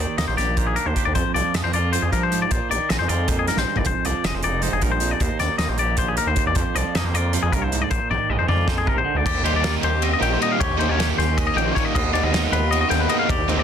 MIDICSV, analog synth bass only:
0, 0, Header, 1, 2, 480
1, 0, Start_track
1, 0, Key_signature, -3, "major"
1, 0, Tempo, 385852
1, 1432, Time_signature, 7, 3, 24, 8
1, 16961, End_track
2, 0, Start_track
2, 0, Title_t, "Analog synth bass"
2, 0, Program_c, 0, 38
2, 219, Note_on_c, 0, 39, 98
2, 322, Note_off_c, 0, 39, 0
2, 355, Note_on_c, 0, 34, 85
2, 452, Note_off_c, 0, 34, 0
2, 476, Note_on_c, 0, 34, 85
2, 976, Note_off_c, 0, 34, 0
2, 1067, Note_on_c, 0, 39, 77
2, 1169, Note_off_c, 0, 39, 0
2, 1327, Note_on_c, 0, 39, 77
2, 1421, Note_off_c, 0, 39, 0
2, 1431, Note_on_c, 0, 41, 104
2, 1532, Note_off_c, 0, 41, 0
2, 1676, Note_on_c, 0, 36, 84
2, 1775, Note_off_c, 0, 36, 0
2, 1921, Note_on_c, 0, 41, 90
2, 2019, Note_off_c, 0, 41, 0
2, 2046, Note_on_c, 0, 41, 78
2, 2142, Note_off_c, 0, 41, 0
2, 2160, Note_on_c, 0, 41, 88
2, 2460, Note_off_c, 0, 41, 0
2, 2520, Note_on_c, 0, 41, 77
2, 2619, Note_off_c, 0, 41, 0
2, 2649, Note_on_c, 0, 53, 84
2, 3047, Note_off_c, 0, 53, 0
2, 3122, Note_on_c, 0, 34, 88
2, 3222, Note_off_c, 0, 34, 0
2, 3371, Note_on_c, 0, 34, 81
2, 3467, Note_off_c, 0, 34, 0
2, 3610, Note_on_c, 0, 34, 94
2, 3707, Note_off_c, 0, 34, 0
2, 3733, Note_on_c, 0, 41, 80
2, 3829, Note_off_c, 0, 41, 0
2, 3851, Note_on_c, 0, 41, 86
2, 4350, Note_off_c, 0, 41, 0
2, 4441, Note_on_c, 0, 34, 82
2, 4542, Note_off_c, 0, 34, 0
2, 4681, Note_on_c, 0, 31, 78
2, 4783, Note_off_c, 0, 31, 0
2, 4800, Note_on_c, 0, 29, 99
2, 4902, Note_off_c, 0, 29, 0
2, 5043, Note_on_c, 0, 36, 81
2, 5144, Note_off_c, 0, 36, 0
2, 5275, Note_on_c, 0, 29, 84
2, 5379, Note_off_c, 0, 29, 0
2, 5407, Note_on_c, 0, 29, 78
2, 5506, Note_off_c, 0, 29, 0
2, 5529, Note_on_c, 0, 29, 84
2, 5828, Note_off_c, 0, 29, 0
2, 5876, Note_on_c, 0, 29, 82
2, 5980, Note_off_c, 0, 29, 0
2, 5996, Note_on_c, 0, 34, 84
2, 6401, Note_off_c, 0, 34, 0
2, 6480, Note_on_c, 0, 39, 93
2, 6583, Note_off_c, 0, 39, 0
2, 6725, Note_on_c, 0, 39, 88
2, 6825, Note_off_c, 0, 39, 0
2, 6946, Note_on_c, 0, 39, 98
2, 7054, Note_off_c, 0, 39, 0
2, 7078, Note_on_c, 0, 34, 86
2, 7177, Note_off_c, 0, 34, 0
2, 7184, Note_on_c, 0, 34, 88
2, 7694, Note_off_c, 0, 34, 0
2, 7793, Note_on_c, 0, 39, 82
2, 7898, Note_off_c, 0, 39, 0
2, 8039, Note_on_c, 0, 40, 84
2, 8141, Note_off_c, 0, 40, 0
2, 8158, Note_on_c, 0, 41, 109
2, 8260, Note_off_c, 0, 41, 0
2, 8399, Note_on_c, 0, 36, 84
2, 8501, Note_off_c, 0, 36, 0
2, 8649, Note_on_c, 0, 41, 94
2, 8746, Note_off_c, 0, 41, 0
2, 8762, Note_on_c, 0, 41, 79
2, 8862, Note_off_c, 0, 41, 0
2, 8876, Note_on_c, 0, 41, 86
2, 9179, Note_off_c, 0, 41, 0
2, 9244, Note_on_c, 0, 41, 82
2, 9343, Note_off_c, 0, 41, 0
2, 9362, Note_on_c, 0, 36, 86
2, 9762, Note_off_c, 0, 36, 0
2, 9836, Note_on_c, 0, 34, 95
2, 9938, Note_off_c, 0, 34, 0
2, 10082, Note_on_c, 0, 34, 84
2, 10181, Note_off_c, 0, 34, 0
2, 10316, Note_on_c, 0, 34, 102
2, 10417, Note_off_c, 0, 34, 0
2, 10432, Note_on_c, 0, 41, 89
2, 10534, Note_off_c, 0, 41, 0
2, 10552, Note_on_c, 0, 41, 89
2, 11054, Note_off_c, 0, 41, 0
2, 11135, Note_on_c, 0, 34, 86
2, 11243, Note_off_c, 0, 34, 0
2, 11376, Note_on_c, 0, 38, 84
2, 11483, Note_off_c, 0, 38, 0
2, 11513, Note_on_c, 0, 39, 102
2, 11613, Note_off_c, 0, 39, 0
2, 11621, Note_on_c, 0, 39, 88
2, 11719, Note_off_c, 0, 39, 0
2, 11726, Note_on_c, 0, 39, 93
2, 11837, Note_off_c, 0, 39, 0
2, 11854, Note_on_c, 0, 39, 92
2, 12161, Note_off_c, 0, 39, 0
2, 12229, Note_on_c, 0, 39, 93
2, 12628, Note_off_c, 0, 39, 0
2, 12704, Note_on_c, 0, 34, 93
2, 12905, Note_off_c, 0, 34, 0
2, 13194, Note_on_c, 0, 39, 100
2, 13290, Note_off_c, 0, 39, 0
2, 13313, Note_on_c, 0, 39, 91
2, 13409, Note_off_c, 0, 39, 0
2, 13439, Note_on_c, 0, 39, 86
2, 13532, Note_off_c, 0, 39, 0
2, 13549, Note_on_c, 0, 39, 91
2, 13846, Note_off_c, 0, 39, 0
2, 13911, Note_on_c, 0, 39, 94
2, 14307, Note_off_c, 0, 39, 0
2, 14381, Note_on_c, 0, 34, 90
2, 14581, Note_off_c, 0, 34, 0
2, 14872, Note_on_c, 0, 39, 99
2, 14966, Note_off_c, 0, 39, 0
2, 14974, Note_on_c, 0, 39, 90
2, 15076, Note_off_c, 0, 39, 0
2, 15100, Note_on_c, 0, 39, 93
2, 15199, Note_off_c, 0, 39, 0
2, 15216, Note_on_c, 0, 39, 92
2, 15517, Note_off_c, 0, 39, 0
2, 15575, Note_on_c, 0, 39, 90
2, 15977, Note_off_c, 0, 39, 0
2, 16060, Note_on_c, 0, 39, 92
2, 16259, Note_off_c, 0, 39, 0
2, 16536, Note_on_c, 0, 39, 102
2, 16637, Note_off_c, 0, 39, 0
2, 16642, Note_on_c, 0, 39, 89
2, 16748, Note_off_c, 0, 39, 0
2, 16769, Note_on_c, 0, 39, 90
2, 16873, Note_off_c, 0, 39, 0
2, 16884, Note_on_c, 0, 39, 86
2, 16961, Note_off_c, 0, 39, 0
2, 16961, End_track
0, 0, End_of_file